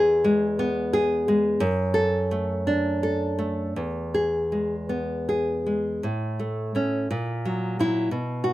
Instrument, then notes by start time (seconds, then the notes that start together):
nylon-string guitar
Already playing: E2 G#4
0.24 G#3
0.59 B3
0.93 G#4
1.28 G#3
1.60 F#2
1.94 A4
2.31 A3
2.67 D4
3.03 A4
3.39 A3
3.76 E2
4.14 G#4
4.52 G#3
4.89 B3
5.29 G#4
5.66 G#3
6.03 A2
6.40 A3
6.75 A3 C#4
7.11 A#2
7.45 F#3
7.79 F#3 E4
8.11 B2
8.44 F#4